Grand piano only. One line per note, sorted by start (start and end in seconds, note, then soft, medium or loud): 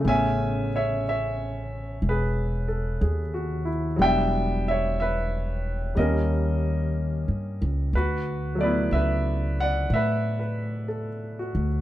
0.00 3.96 C#3 soft
0.00 3.98 A3 soft
0.05 3.98 B3 soft
0.05 0.69 G#5 medium
0.09 4.02 C#4 soft
0.09 0.69 E5 medium
0.76 1.03 C#5 soft
0.76 1.04 E5 medium
1.09 2.01 C#5 soft
1.09 2.08 E5 medium
2.09 3.00 G#4 soft
2.09 3.67 B4 medium
2.68 3.19 A4 soft
3.01 3.64 G#4 soft
3.34 3.85 F#4 soft
3.65 4.17 E4 soft
3.96 5.95 F#3 soft
3.96 5.94 G3 soft
3.96 5.97 B3 soft
4.01 5.97 D4 soft
4.01 4.64 E5 medium
4.01 4.63 G5 medium
4.68 4.98 C#5 soft
4.68 4.97 E5 medium
5.00 5.94 B4 medium
5.00 5.93 E5 medium
5.95 7.93 G3 soft
5.95 7.94 A#3 soft
5.95 7.59 A#4 soft
5.95 7.58 D#5 medium
6.00 7.95 C#4 soft
7.95 8.58 F#4 medium
7.95 8.62 B4 medium
8.55 11.81 F#3 soft
8.55 11.81 A3 soft
8.61 11.81 B3 soft
8.61 8.91 B4 soft
8.61 8.90 D5 medium
8.65 11.81 E4 soft
8.93 9.56 B4 soft
8.93 9.60 E5 medium
9.60 9.90 D5 medium
9.60 9.89 F#5 medium
9.94 10.38 B4 medium
9.94 11.52 E5 medium
10.39 11.09 B4 soft
10.88 11.67 A4 soft
11.39 11.81 F#4 soft